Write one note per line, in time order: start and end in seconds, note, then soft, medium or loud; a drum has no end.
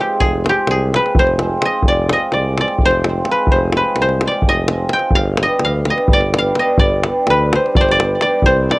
0.00 0.43 G#3 medium
0.00 0.12 C4 medium
0.00 0.12 F4 medium
0.00 0.26 G4 medium
0.00 0.12 G#4 medium
0.00 1.02 C5 medium
0.00 0.58 D5 medium
0.20 0.49 F1 medium
0.20 0.55 G#4 medium
0.20 davul low medium
0.43 0.91 G#3 medium
0.43 0.58 C4 medium
0.43 0.59 F4 medium
0.43 0.59 G#4 medium
0.43 davul high medium
0.49 0.77 G4 medium
0.67 0.96 C2 loud
0.67 2.68 G#4 medium
0.67 davul high medium
0.92 1.38 G#3 medium
0.92 1.07 C4 medium
0.92 1.08 F4 medium
0.92 1.08 G#4 medium
0.92 1.25 B4 medium
0.92 davul high medium
1.06 davul high soft
1.15 1.57 F1 medium
1.15 davul low loud
1.19 2.85 C5 medium
1.27 davul high soft
1.39 1.59 G#3 medium
1.39 1.54 C4 medium
1.39 1.54 F4 medium
1.39 1.54 G#4 medium
1.39 davul high medium
1.60 2.08 G#3 medium
1.60 1.75 C4 medium
1.60 1.76 F4 medium
1.60 1.76 G#4 medium
1.60 davul high medium
1.65 1.94 D#5 medium
1.83 2.13 F1 loud
1.83 davul low medium
1.88 2.19 D5 loud
2.09 2.56 G#3 medium
2.09 2.24 C4 medium
2.09 2.24 F4 medium
2.09 2.24 G#4 medium
2.09 2.39 D#5 medium
2.09 davul high medium
2.32 2.62 C2 medium
2.32 2.60 D5 medium
2.32 davul high medium
2.57 3.03 G#3 medium
2.57 2.73 C4 medium
2.57 2.72 F4 soft
2.57 2.73 G#4 medium
2.57 4.21 D5 medium
2.57 davul high medium
2.68 davul high soft
2.78 3.22 F1 medium
2.78 davul low medium
2.86 3.37 C5 loud
2.91 davul high soft
3.04 3.26 G#3 medium
3.04 3.19 C4 medium
3.04 3.19 F4 soft
3.04 3.20 G#4 medium
3.04 davul high medium
3.25 3.74 G#3 medium
3.25 3.41 C4 medium
3.25 3.41 F4 medium
3.25 3.42 G#4 medium
3.25 davul high medium
3.31 3.58 B4 medium
3.47 3.78 F1 loud
3.47 davul low medium
3.52 3.83 C5 medium
3.73 4.22 G#3 medium
3.73 3.90 C4 medium
3.73 3.90 F4 soft
3.73 3.90 G#4 medium
3.73 davul high medium
3.77 4.08 B4 medium
3.96 4.26 C2 medium
3.96 davul high medium
4.02 5.73 C5 medium
4.09 davul high soft
4.21 4.69 G#3 medium
4.21 4.38 C4 medium
4.21 4.38 F4 medium
4.21 davul high medium
4.26 4.39 G#4 medium
4.26 4.55 D5 medium
4.32 davul high soft
4.42 davul low medium
4.46 4.87 F1 medium
4.46 5.42 D#5 loud
4.68 4.92 G#3 medium
4.68 4.84 C4 medium
4.68 4.84 F4 medium
4.68 4.85 G#4 medium
4.68 davul high medium
4.89 5.19 G#3 medium
4.89 5.07 C4 medium
4.89 6.28 G5 medium
4.89 davul high medium
4.94 5.07 F4 medium
4.94 5.08 G#4 medium
4.99 davul high soft
5.11 5.43 G1 loud
5.11 davul low medium
5.15 5.64 F5 medium
5.37 5.88 G3 medium
5.37 davul high medium
5.42 5.55 B3 medium
5.42 5.56 D4 medium
5.42 5.56 G4 medium
5.42 5.90 D#5 medium
5.60 5.91 D2 medium
5.60 davul high medium
5.65 6.38 F5 medium
5.85 davul high medium
5.89 6.33 G3 medium
5.89 6.03 B3 soft
5.89 6.04 D4 medium
5.89 6.04 G4 medium
5.89 6.19 D#5 medium
5.98 davul high soft
6.08 6.52 G1 medium
6.08 davul low loud
6.13 6.65 D5 medium
6.21 davul high soft
6.34 6.54 G3 medium
6.34 6.49 B3 medium
6.34 6.49 D4 medium
6.34 6.49 G4 medium
6.34 davul high medium
6.38 7.83 F5 medium
6.55 7.03 G3 medium
6.55 6.71 B3 medium
6.55 6.71 D4 medium
6.55 6.71 G4 medium
6.55 davul high medium
6.59 6.85 D#5 medium
6.78 7.08 G1 medium
6.78 7.76 D5 medium
6.78 davul low loud
7.03 7.50 G3 medium
7.03 7.19 B3 medium
7.03 7.19 D4 medium
7.03 7.20 G4 medium
7.03 davul high medium
7.27 7.56 D2 loud
7.27 7.61 B4 medium
7.27 davul high medium
7.51 7.99 G3 medium
7.51 7.66 B3 soft
7.51 7.67 D4 medium
7.51 7.67 G4 medium
7.51 davul high medium
7.55 7.80 C5 medium
7.66 davul high soft
7.75 8.16 G1 medium
7.75 7.91 D5 medium
7.75 davul low loud
7.81 8.45 C5 medium
7.89 8.22 D5 loud
7.89 davul high soft
8.00 8.20 G3 medium
8.00 8.14 B3 medium
8.00 8.14 D4 medium
8.00 8.14 G4 medium
8.00 davul high medium
8.21 8.48 G3 medium
8.21 8.35 B3 medium
8.21 8.36 D4 medium
8.21 8.36 G4 medium
8.21 8.71 D5 medium
8.21 davul high medium
8.42 8.73 C2 loud
8.42 8.79 C5 medium
8.42 davul low medium
8.69 8.79 G3 medium
8.69 8.79 C4 medium
8.69 8.79 D#4 medium
8.69 8.79 G4 medium
8.69 8.79 D5 medium
8.69 davul high medium